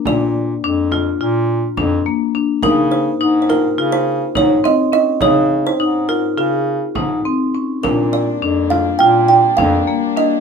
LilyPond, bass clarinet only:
\new Staff \with { instrumentName = "Bass clarinet" } { \clef bass \time 9/8 \key bes \mixolydian \tempo 4. = 69 bes,4 f,4 bes,4 f,8 r4 | des4 aes,4 des4 aes,8 r4 | des4 aes,4 des4 aes,8 r4 | bes,4 f,4 bes,4 f,8 r4 | }